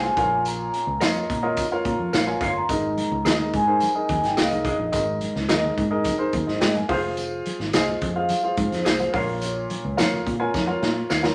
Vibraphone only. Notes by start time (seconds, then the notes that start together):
Already playing: G#5
0.48 A#5
2.15 F5
2.49 C6
2.58 A#5
3.55 G#5
4.25 G5
4.40 F5
4.68 D#5
7.75 D#5
8.17 F5
8.60 C5
9.15 C#5